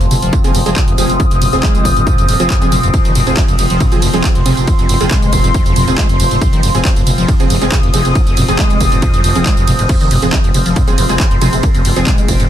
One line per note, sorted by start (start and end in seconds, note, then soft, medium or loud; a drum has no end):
0.00 0.08 F1 medium
0.00 0.06 F2 loud
0.00 9.88 F3 medium
0.00 9.88 C4 medium
0.00 0.14 C6 medium
0.00 closed hi-hat medium
0.00 tambourine soft
0.11 0.20 F1 loud
0.11 0.15 C3 medium
0.11 3.62 D#6 loud
0.11 mid tom medium
0.11 open hi-hat loud
0.11 tambourine medium
0.22 0.30 F1 medium
0.22 0.34 F3 medium
0.22 closed hi-hat medium
0.22 tambourine soft
0.33 0.39 F2 loud
0.33 kick loud
0.33 closed hi-hat medium
0.33 tambourine soft
0.44 0.52 F#1 medium
0.44 0.53 F3 medium
0.44 0.53 C4 medium
0.44 0.53 G#4 loud
0.44 closed hi-hat medium
0.44 tambourine soft
0.55 0.63 F1 loud
0.55 0.61 F#2 medium
0.55 open hi-hat loud
0.55 tambourine medium
0.66 0.74 F1 medium
0.66 0.75 F3 medium
0.66 0.69 G#3 medium
0.66 0.75 C4 medium
0.66 0.75 G#4 loud
0.66 closed hi-hat medium
0.66 tambourine soft
0.76 kick loud
0.76 clap loud
0.76 closed hi-hat medium
0.76 mid tom medium
0.76 tambourine soft
0.88 0.95 F1 medium
0.88 0.93 F2 loud
0.88 closed hi-hat medium
0.98 1.07 F1 loud
0.98 1.22 C3 medium
0.98 1.13 F3 medium
0.98 1.13 C4 medium
0.98 1.13 G#4 medium
0.98 open hi-hat loud
0.98 tambourine medium
1.09 1.17 F1 medium
1.09 closed hi-hat medium
1.09 tambourine soft
1.20 1.26 F2 loud
1.20 kick loud
1.20 closed hi-hat medium
1.20 tambourine soft
1.31 1.39 F1 medium
1.31 1.40 F2 medium
1.31 closed hi-hat medium
1.31 tambourine soft
1.42 1.50 F1 loud
1.42 1.48 F#2 medium
1.42 mid tom loud
1.42 open hi-hat loud
1.42 tambourine medium
1.53 1.61 F1 medium
1.53 1.56 D#2 medium
1.53 1.67 F3 loud
1.53 1.67 C4 medium
1.53 1.67 G#4 loud
1.53 closed hi-hat medium
1.53 tambourine soft
1.63 1.87 G#3 medium
1.63 kick loud
1.63 clap loud
1.63 closed hi-hat medium
1.63 tambourine soft
1.75 1.82 F1 medium
1.75 closed hi-hat medium
1.75 tambourine soft
1.85 1.93 F1 loud
1.85 1.89 F2 loud
1.85 kick medium
1.85 open hi-hat medium
1.85 tambourine medium
1.96 2.04 F1 medium
1.96 2.02 G#2 medium
1.96 closed hi-hat medium
1.96 tambourine soft
2.07 2.16 F2 medium
2.07 kick loud
2.07 closed hi-hat medium
2.07 mid tom loud
2.07 tambourine soft
2.18 2.26 F#1 medium
2.18 2.27 F2 loud
2.18 closed hi-hat medium
2.18 tambourine soft
2.29 2.37 D#1 loud
2.29 2.35 G#2 medium
2.29 open hi-hat loud
2.29 tambourine medium
2.40 2.48 F1 medium
2.40 2.49 F3 medium
2.40 2.52 F3 medium
2.40 2.49 C4 medium
2.40 2.49 G#4 loud
2.40 closed hi-hat medium
2.40 tambourine soft
2.50 2.63 F2 medium
2.50 kick loud
2.50 clap loud
2.50 closed hi-hat medium
2.50 tambourine soft
2.62 2.69 F1 medium
2.62 2.70 F3 medium
2.62 2.65 F3 medium
2.62 2.70 C4 medium
2.62 2.70 G#4 loud
2.62 closed hi-hat medium
2.62 tambourine soft
2.72 2.80 F1 loud
2.72 2.76 F3 medium
2.72 mid tom loud
2.72 open hi-hat loud
2.72 tambourine medium
2.83 2.91 F1 medium
2.83 2.89 F2 loud
2.83 closed hi-hat medium
2.83 tambourine soft
2.94 3.00 F2 loud
2.94 kick loud
2.94 closed hi-hat medium
2.94 ride medium
2.94 tambourine soft
3.05 3.13 F1 medium
3.05 3.14 D#3 medium
3.05 closed hi-hat medium
3.05 tambourine soft
3.15 3.24 F1 medium
3.15 3.22 F#2 medium
3.15 mid tom loud
3.15 open hi-hat loud
3.15 ride medium
3.15 tambourine medium
3.27 3.35 F1 medium
3.27 3.30 G#2 medium
3.27 3.41 F3 medium
3.27 3.41 C4 medium
3.27 3.41 G#4 medium
3.27 closed hi-hat medium
3.27 tambourine soft
3.37 3.41 F2 medium
3.37 kick loud
3.37 clap loud
3.37 closed hi-hat medium
3.37 ride medium
3.37 tambourine soft
3.48 3.56 F1 medium
3.48 3.54 F2 loud
3.48 closed hi-hat medium
3.48 tambourine soft
3.59 3.67 F1 loud
3.59 3.63 C3 medium
3.59 7.10 C6 loud
3.59 open hi-hat medium
3.59 ride medium
3.59 tambourine medium
3.70 3.78 F1 loud
3.70 3.82 F3 medium
3.70 closed hi-hat medium
3.70 tambourine soft
3.80 3.87 F2 loud
3.80 kick loud
3.80 closed hi-hat medium
3.80 mid tom medium
3.80 ride medium
3.80 tambourine soft
3.92 4.00 F#1 medium
3.92 4.01 F3 medium
3.92 4.01 C4 medium
3.92 4.01 G#4 medium
3.92 closed hi-hat medium
3.92 tambourine soft
4.02 4.11 F1 loud
4.02 4.09 F#2 medium
4.02 open hi-hat loud
4.02 ride medium
4.02 tambourine medium
4.14 4.21 F1 medium
4.14 4.22 F3 medium
4.14 4.17 G#3 medium
4.14 4.22 C4 medium
4.14 4.22 G#4 loud
4.14 closed hi-hat medium
4.14 tambourine soft
4.24 kick loud
4.24 clap loud
4.24 closed hi-hat medium
4.24 ride medium
4.24 tambourine soft
4.35 4.43 F1 medium
4.35 4.41 F2 loud
4.35 closed hi-hat medium
4.46 4.54 F1 loud
4.46 4.69 C3 medium
4.46 4.61 F3 medium
4.46 4.61 C4 medium
4.46 4.61 G#4 medium
4.46 mid tom loud
4.46 open hi-hat loud
4.46 ride medium
4.46 tambourine medium
4.57 4.65 F1 medium
4.57 closed hi-hat medium
4.57 tambourine soft
4.67 4.74 F2 loud
4.67 kick loud
4.67 closed hi-hat medium
4.67 ride medium
4.67 tambourine soft
4.79 4.87 F1 medium
4.79 4.88 F2 medium
4.79 closed hi-hat medium
4.79 tambourine soft
4.89 4.98 F1 loud
4.89 4.96 F#2 medium
4.89 open hi-hat loud
4.89 ride medium
4.89 tambourine medium
5.01 5.08 F1 medium
5.01 5.04 D#2 medium
5.01 5.15 F3 loud
5.01 5.15 C4 medium
5.01 5.15 G#4 loud
5.01 closed hi-hat medium
5.01 tambourine soft
5.11 5.34 G#3 loud
5.11 kick loud
5.11 clap loud
5.11 closed hi-hat medium
5.11 mid tom medium
5.11 ride medium
5.11 tambourine soft
5.22 5.30 F1 medium
5.22 closed hi-hat medium
5.22 tambourine soft
5.33 5.41 F1 loud
5.33 5.37 F2 loud
5.33 kick medium
5.33 open hi-hat medium
5.33 ride medium
5.33 tambourine medium
5.44 5.52 F1 medium
5.44 5.50 G#2 medium
5.44 closed hi-hat medium
5.44 tambourine soft
5.54 5.64 F2 medium
5.54 kick loud
5.54 closed hi-hat medium
5.54 ride medium
5.54 tambourine soft
5.66 5.74 F#1 medium
5.66 5.75 F2 loud
5.66 closed hi-hat medium
5.66 tambourine soft
5.76 5.85 F1 loud
5.76 5.86 F2 loud
5.76 mid tom loud
5.76 open hi-hat loud
5.76 ride medium
5.76 tambourine medium
5.88 5.95 F1 loud
5.88 5.91 D#2 medium
5.88 5.96 F3 medium
5.88 5.96 C4 medium
5.88 5.96 G#4 medium
5.88 closed hi-hat medium
5.88 tambourine soft
5.98 6.07 G#3 loud
5.98 kick loud
5.98 clap loud
5.98 closed hi-hat medium
5.98 ride medium
5.98 tambourine soft
6.09 6.17 F1 medium
6.09 6.18 F2 loud
6.09 closed hi-hat medium
6.20 6.28 F1 loud
6.20 6.24 F2 loud
6.20 open hi-hat medium
6.20 ride medium
6.20 tambourine medium
6.31 6.39 F1 medium
6.31 6.37 G#2 medium
6.31 closed hi-hat medium
6.31 tambourine soft
6.41 6.48 F2 loud
6.41 kick loud
6.41 closed hi-hat medium
6.41 mid tom medium
6.41 ride medium
6.41 tambourine soft
6.53 6.61 F1 medium
6.53 6.61 D#3 medium
6.53 closed hi-hat medium
6.53 tambourine soft
6.63 6.72 F1 loud
6.63 6.70 F#2 medium
6.63 open hi-hat loud
6.63 ride medium
6.63 tambourine medium
6.75 6.82 F1 medium
6.75 6.78 G#2 medium
6.75 6.89 F3 medium
6.75 6.89 C4 medium
6.75 6.89 G#4 medium
6.75 closed hi-hat medium
6.75 tambourine soft
6.85 6.89 F2 medium
6.85 kick loud
6.85 clap loud
6.85 closed hi-hat medium
6.85 ride medium
6.85 tambourine soft
6.96 7.04 F1 medium
6.96 7.02 F2 loud
6.96 closed hi-hat medium
6.96 tambourine soft
7.07 7.15 F1 loud
7.07 7.10 C3 medium
7.07 10.58 D#6 medium
7.07 mid tom medium
7.07 open hi-hat medium
7.07 ride medium
7.07 tambourine medium
7.18 7.26 F1 loud
7.18 7.30 F3 medium
7.18 closed hi-hat medium
7.18 tambourine soft
7.28 7.35 F2 loud
7.28 kick loud
7.28 closed hi-hat medium
7.28 ride medium
7.28 tambourine soft
7.40 7.47 F#1 medium
7.40 7.49 F3 medium
7.40 7.49 C4 medium
7.40 7.49 G#4 loud
7.40 closed hi-hat medium
7.40 tambourine soft
7.50 7.59 F1 loud
7.50 7.56 F#2 medium
7.50 open hi-hat loud
7.50 ride medium
7.50 tambourine medium
7.61 7.69 F1 medium
7.61 7.70 F3 medium
7.61 7.65 G#3 medium
7.61 7.70 C4 medium
7.61 7.70 G#4 loud
7.61 closed hi-hat medium
7.61 tambourine soft
7.72 kick loud
7.72 clap loud
7.72 closed hi-hat medium
7.72 mid tom medium
7.72 ride medium
7.72 tambourine soft
7.83 7.91 F1 medium
7.83 7.89 F2 loud
7.83 closed hi-hat medium
7.94 8.02 F1 loud
7.94 8.17 C3 medium
7.94 8.09 F3 medium
7.94 8.09 C4 medium
7.94 8.09 G#4 medium
7.94 open hi-hat medium
7.94 ride medium
7.94 tambourine medium
8.05 8.13 F1 medium
8.05 closed hi-hat medium
8.05 tambourine soft
8.15 8.22 F2 loud
8.15 kick loud
8.15 closed hi-hat medium
8.15 ride medium
8.15 tambourine soft
8.27 8.35 F1 medium
8.27 8.35 F2 medium
8.27 closed hi-hat medium
8.27 tambourine soft
8.37 8.46 F1 loud
8.37 8.43 F#2 medium
8.37 mid tom medium
8.37 open hi-hat loud
8.37 ride medium
8.37 tambourine medium
8.48 8.56 F1 medium
8.48 8.52 D#2 medium
8.48 8.63 F3 medium
8.48 8.63 C4 medium
8.48 8.63 G#4 loud
8.48 closed hi-hat medium
8.48 tambourine soft
8.59 8.82 G#3 loud
8.59 kick loud
8.59 clap loud
8.59 closed hi-hat medium
8.59 ride medium
8.59 tambourine soft
8.70 8.78 F1 medium
8.70 closed hi-hat medium
8.70 tambourine soft
8.80 8.89 F1 loud
8.80 8.84 F2 loud
8.80 kick medium
8.80 open hi-hat medium
8.80 ride medium
8.80 tambourine medium
8.92 9.00 F1 loud
8.92 8.98 G#2 medium
8.92 closed hi-hat medium
8.92 tambourine soft
9.02 9.12 F2 medium
9.02 kick loud
9.02 closed hi-hat medium
9.02 mid tom medium
9.02 ride medium
9.02 tambourine soft
9.14 9.22 F#1 medium
9.14 9.22 F2 loud
9.14 closed hi-hat medium
9.14 tambourine soft
9.24 9.33 F1 loud
9.24 9.33 F2 loud
9.24 open hi-hat loud
9.24 ride medium
9.24 tambourine medium
9.35 9.43 F1 medium
9.35 9.39 D#2 medium
9.35 9.44 F3 medium
9.35 9.44 C4 medium
9.35 9.44 G#4 medium
9.35 closed hi-hat medium
9.35 tambourine soft
9.46 9.55 G#3 loud
9.46 kick loud
9.46 clap loud
9.46 closed hi-hat medium
9.46 ride medium
9.46 tambourine soft
9.57 9.65 F1 medium
9.57 9.66 F2 loud
9.57 closed hi-hat medium
9.57 tambourine soft
9.67 9.76 F1 loud
9.67 9.71 F2 loud
9.67 mid tom medium
9.67 open hi-hat medium
9.67 ride medium
9.67 tambourine medium
9.79 9.87 F1 medium
9.79 9.85 G#2 medium
9.79 closed hi-hat medium
9.79 tambourine soft
9.89 9.96 F2 loud
9.89 12.49 F3 medium
9.89 12.49 C4 medium
9.89 kick loud
9.89 closed hi-hat medium
9.89 ride medium
9.89 tambourine soft
9.89 crash medium
10.01 10.08 F1 medium
10.01 10.09 D#3 medium
10.01 closed hi-hat medium
10.01 tambourine soft
10.11 10.20 F1 loud
10.11 10.17 F#2 medium
10.11 mid tom medium
10.11 open hi-hat loud
10.11 ride medium
10.11 tambourine medium
10.22 10.30 F1 medium
10.22 10.26 G#2 medium
10.22 10.37 F3 medium
10.22 10.37 C4 medium
10.22 10.37 G#4 medium
10.22 closed hi-hat medium
10.22 tambourine soft
10.33 10.37 F2 medium
10.33 kick loud
10.33 clap loud
10.33 closed hi-hat medium
10.33 ride medium
10.33 tambourine soft
10.44 10.52 F1 medium
10.44 10.50 F2 loud
10.44 closed hi-hat medium
10.44 tambourine soft
10.54 10.63 F1 loud
10.54 10.58 C3 medium
10.54 11.92 C6 medium
10.54 open hi-hat medium
10.54 ride medium
10.54 tambourine medium
10.66 10.74 F1 loud
10.66 10.78 F3 medium
10.66 closed hi-hat medium
10.66 tambourine soft
10.76 10.83 F2 loud
10.76 kick loud
10.76 closed hi-hat medium
10.76 mid tom medium
10.76 ride medium
10.76 tambourine soft
10.88 10.95 F#1 medium
10.88 10.96 F3 medium
10.88 10.96 C4 medium
10.88 10.96 G#4 loud
10.88 closed hi-hat medium
10.88 tambourine soft
10.98 11.07 F1 loud
10.98 11.04 F#2 medium
10.98 open hi-hat loud
10.98 ride medium
10.98 tambourine medium
11.09 11.17 F1 medium
11.09 11.18 F3 medium
11.09 11.13 G#3 medium
11.09 11.18 C4 medium
11.09 11.18 G#4 loud
11.09 closed hi-hat medium
11.09 tambourine soft
11.20 kick loud
11.20 clap loud
11.20 closed hi-hat medium
11.20 ride medium
11.20 tambourine soft
11.31 11.39 F1 medium
11.31 11.37 F2 loud
11.31 closed hi-hat medium
11.41 11.50 F1 loud
11.41 11.65 C3 medium
11.41 11.56 F3 medium
11.41 11.56 C4 medium
11.41 11.57 G#4 medium
11.41 mid tom medium
11.41 open hi-hat medium
11.41 ride medium
11.41 tambourine medium
11.53 11.61 F1 medium
11.53 closed hi-hat medium
11.53 tambourine soft
11.63 11.69 F2 loud
11.63 kick loud
11.63 closed hi-hat medium
11.63 ride medium
11.63 tambourine soft
11.75 11.82 F1 medium
11.75 11.83 F2 medium
11.75 12.49 A#5 medium
11.75 closed hi-hat medium
11.75 tambourine soft
11.85 11.93 F1 medium
11.85 11.91 F#2 medium
11.85 open hi-hat loud
11.85 ride medium
11.85 tambourine medium
11.96 12.04 F1 loud
11.96 12.00 D#2 medium
11.96 12.11 F3 loud
11.96 12.11 C4 medium
11.96 12.11 G#4 loud
11.96 closed hi-hat medium
11.96 tambourine soft
12.07 12.30 G#3 loud
12.07 kick loud
12.07 clap loud
12.07 closed hi-hat medium
12.07 mid tom medium
12.07 ride medium
12.07 tambourine soft
12.18 12.26 F1 medium
12.18 closed hi-hat medium
12.18 tambourine soft
12.28 12.37 F1 loud
12.28 12.32 F2 loud
12.28 kick medium
12.28 open hi-hat medium
12.28 ride medium
12.28 tambourine medium
12.40 12.48 F1 loud
12.40 12.46 G#2 medium
12.40 closed hi-hat medium
12.40 tambourine soft